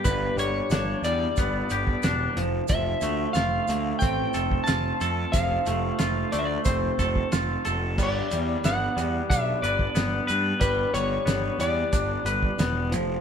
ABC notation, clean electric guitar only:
X:1
M:4/4
L:1/8
Q:1/4=91
K:Glyd
V:1 name="Clean electric guitar"
[G,,B,DG] G, D G, B, G D =F, | =F, A, =F A, =C A F A | =F, A, =F A, =C A F A | G, G, B, G, D B B, B |
G, G, B, G, D B B, =F, |]